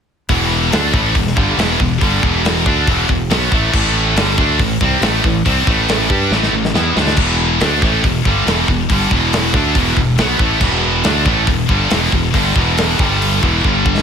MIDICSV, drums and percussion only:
0, 0, Header, 1, 2, 480
1, 0, Start_track
1, 0, Tempo, 430725
1, 322, Time_signature, 4, 2, 24, 8
1, 15626, End_track
2, 0, Start_track
2, 0, Title_t, "Drums"
2, 320, Note_on_c, 9, 46, 59
2, 325, Note_on_c, 9, 36, 105
2, 431, Note_off_c, 9, 46, 0
2, 437, Note_off_c, 9, 36, 0
2, 806, Note_on_c, 9, 46, 65
2, 818, Note_on_c, 9, 38, 121
2, 917, Note_off_c, 9, 46, 0
2, 930, Note_off_c, 9, 38, 0
2, 1043, Note_on_c, 9, 36, 101
2, 1155, Note_off_c, 9, 36, 0
2, 1283, Note_on_c, 9, 36, 88
2, 1288, Note_on_c, 9, 46, 57
2, 1395, Note_off_c, 9, 36, 0
2, 1399, Note_off_c, 9, 46, 0
2, 1417, Note_on_c, 9, 38, 32
2, 1524, Note_on_c, 9, 36, 111
2, 1529, Note_off_c, 9, 38, 0
2, 1636, Note_off_c, 9, 36, 0
2, 1768, Note_on_c, 9, 46, 66
2, 1781, Note_on_c, 9, 38, 112
2, 1880, Note_off_c, 9, 46, 0
2, 1892, Note_off_c, 9, 38, 0
2, 2005, Note_on_c, 9, 36, 91
2, 2116, Note_off_c, 9, 36, 0
2, 2244, Note_on_c, 9, 36, 98
2, 2248, Note_on_c, 9, 46, 54
2, 2356, Note_off_c, 9, 36, 0
2, 2360, Note_off_c, 9, 46, 0
2, 2485, Note_on_c, 9, 36, 103
2, 2597, Note_off_c, 9, 36, 0
2, 2731, Note_on_c, 9, 46, 65
2, 2744, Note_on_c, 9, 38, 111
2, 2843, Note_off_c, 9, 46, 0
2, 2855, Note_off_c, 9, 38, 0
2, 2964, Note_on_c, 9, 36, 104
2, 3076, Note_off_c, 9, 36, 0
2, 3204, Note_on_c, 9, 36, 104
2, 3208, Note_on_c, 9, 46, 56
2, 3315, Note_off_c, 9, 36, 0
2, 3319, Note_off_c, 9, 46, 0
2, 3445, Note_on_c, 9, 36, 92
2, 3556, Note_off_c, 9, 36, 0
2, 3683, Note_on_c, 9, 46, 63
2, 3695, Note_on_c, 9, 38, 115
2, 3794, Note_off_c, 9, 46, 0
2, 3806, Note_off_c, 9, 38, 0
2, 3921, Note_on_c, 9, 36, 96
2, 4032, Note_off_c, 9, 36, 0
2, 4163, Note_on_c, 9, 36, 104
2, 4163, Note_on_c, 9, 49, 97
2, 4274, Note_off_c, 9, 36, 0
2, 4274, Note_off_c, 9, 49, 0
2, 4641, Note_on_c, 9, 46, 65
2, 4654, Note_on_c, 9, 38, 117
2, 4753, Note_off_c, 9, 46, 0
2, 4765, Note_off_c, 9, 38, 0
2, 4880, Note_on_c, 9, 36, 101
2, 4992, Note_off_c, 9, 36, 0
2, 5120, Note_on_c, 9, 36, 91
2, 5120, Note_on_c, 9, 46, 60
2, 5232, Note_off_c, 9, 36, 0
2, 5232, Note_off_c, 9, 46, 0
2, 5359, Note_on_c, 9, 36, 107
2, 5470, Note_off_c, 9, 36, 0
2, 5595, Note_on_c, 9, 46, 67
2, 5607, Note_on_c, 9, 38, 119
2, 5706, Note_off_c, 9, 46, 0
2, 5718, Note_off_c, 9, 38, 0
2, 5840, Note_on_c, 9, 36, 91
2, 5952, Note_off_c, 9, 36, 0
2, 6082, Note_on_c, 9, 36, 95
2, 6088, Note_on_c, 9, 46, 58
2, 6194, Note_off_c, 9, 36, 0
2, 6199, Note_off_c, 9, 46, 0
2, 6321, Note_on_c, 9, 36, 103
2, 6432, Note_off_c, 9, 36, 0
2, 6559, Note_on_c, 9, 46, 63
2, 6571, Note_on_c, 9, 38, 119
2, 6670, Note_off_c, 9, 46, 0
2, 6683, Note_off_c, 9, 38, 0
2, 6797, Note_on_c, 9, 36, 104
2, 6908, Note_off_c, 9, 36, 0
2, 7044, Note_on_c, 9, 38, 63
2, 7156, Note_off_c, 9, 38, 0
2, 7167, Note_on_c, 9, 38, 58
2, 7278, Note_off_c, 9, 38, 0
2, 7410, Note_on_c, 9, 38, 69
2, 7522, Note_off_c, 9, 38, 0
2, 7527, Note_on_c, 9, 38, 93
2, 7639, Note_off_c, 9, 38, 0
2, 7765, Note_on_c, 9, 38, 93
2, 7877, Note_off_c, 9, 38, 0
2, 7882, Note_on_c, 9, 38, 91
2, 7986, Note_on_c, 9, 49, 92
2, 7994, Note_off_c, 9, 38, 0
2, 7994, Note_on_c, 9, 36, 100
2, 8097, Note_off_c, 9, 49, 0
2, 8105, Note_off_c, 9, 36, 0
2, 8473, Note_on_c, 9, 46, 59
2, 8486, Note_on_c, 9, 38, 122
2, 8585, Note_off_c, 9, 46, 0
2, 8597, Note_off_c, 9, 38, 0
2, 8716, Note_on_c, 9, 36, 100
2, 8828, Note_off_c, 9, 36, 0
2, 8959, Note_on_c, 9, 36, 86
2, 8961, Note_on_c, 9, 46, 58
2, 9070, Note_off_c, 9, 36, 0
2, 9073, Note_off_c, 9, 46, 0
2, 9198, Note_on_c, 9, 36, 104
2, 9309, Note_off_c, 9, 36, 0
2, 9440, Note_on_c, 9, 46, 61
2, 9452, Note_on_c, 9, 38, 114
2, 9551, Note_off_c, 9, 46, 0
2, 9564, Note_off_c, 9, 38, 0
2, 9675, Note_on_c, 9, 36, 84
2, 9787, Note_off_c, 9, 36, 0
2, 9915, Note_on_c, 9, 36, 100
2, 9917, Note_on_c, 9, 46, 60
2, 10026, Note_off_c, 9, 36, 0
2, 10028, Note_off_c, 9, 46, 0
2, 10154, Note_on_c, 9, 36, 97
2, 10265, Note_off_c, 9, 36, 0
2, 10396, Note_on_c, 9, 46, 68
2, 10408, Note_on_c, 9, 38, 113
2, 10507, Note_off_c, 9, 46, 0
2, 10520, Note_off_c, 9, 38, 0
2, 10630, Note_on_c, 9, 36, 102
2, 10742, Note_off_c, 9, 36, 0
2, 10868, Note_on_c, 9, 36, 96
2, 10870, Note_on_c, 9, 46, 59
2, 10979, Note_off_c, 9, 36, 0
2, 10981, Note_off_c, 9, 46, 0
2, 11107, Note_on_c, 9, 36, 91
2, 11219, Note_off_c, 9, 36, 0
2, 11342, Note_on_c, 9, 46, 62
2, 11354, Note_on_c, 9, 38, 116
2, 11453, Note_off_c, 9, 46, 0
2, 11465, Note_off_c, 9, 38, 0
2, 11583, Note_on_c, 9, 36, 107
2, 11694, Note_off_c, 9, 36, 0
2, 11822, Note_on_c, 9, 36, 105
2, 11823, Note_on_c, 9, 57, 90
2, 11933, Note_off_c, 9, 36, 0
2, 11935, Note_off_c, 9, 57, 0
2, 12300, Note_on_c, 9, 46, 59
2, 12312, Note_on_c, 9, 38, 116
2, 12412, Note_off_c, 9, 46, 0
2, 12424, Note_off_c, 9, 38, 0
2, 12545, Note_on_c, 9, 36, 104
2, 12656, Note_off_c, 9, 36, 0
2, 12781, Note_on_c, 9, 46, 52
2, 12784, Note_on_c, 9, 36, 90
2, 12893, Note_off_c, 9, 46, 0
2, 12896, Note_off_c, 9, 36, 0
2, 13027, Note_on_c, 9, 36, 106
2, 13139, Note_off_c, 9, 36, 0
2, 13265, Note_on_c, 9, 46, 66
2, 13278, Note_on_c, 9, 38, 112
2, 13377, Note_off_c, 9, 46, 0
2, 13389, Note_off_c, 9, 38, 0
2, 13511, Note_on_c, 9, 36, 90
2, 13623, Note_off_c, 9, 36, 0
2, 13751, Note_on_c, 9, 46, 57
2, 13752, Note_on_c, 9, 36, 98
2, 13862, Note_off_c, 9, 46, 0
2, 13863, Note_off_c, 9, 36, 0
2, 13993, Note_on_c, 9, 36, 98
2, 14105, Note_off_c, 9, 36, 0
2, 14236, Note_on_c, 9, 46, 69
2, 14249, Note_on_c, 9, 38, 117
2, 14348, Note_off_c, 9, 46, 0
2, 14360, Note_off_c, 9, 38, 0
2, 14479, Note_on_c, 9, 36, 106
2, 14591, Note_off_c, 9, 36, 0
2, 14729, Note_on_c, 9, 46, 57
2, 14841, Note_off_c, 9, 46, 0
2, 14965, Note_on_c, 9, 36, 101
2, 15077, Note_off_c, 9, 36, 0
2, 15205, Note_on_c, 9, 36, 65
2, 15317, Note_off_c, 9, 36, 0
2, 15443, Note_on_c, 9, 36, 91
2, 15554, Note_off_c, 9, 36, 0
2, 15575, Note_on_c, 9, 38, 86
2, 15626, Note_off_c, 9, 38, 0
2, 15626, End_track
0, 0, End_of_file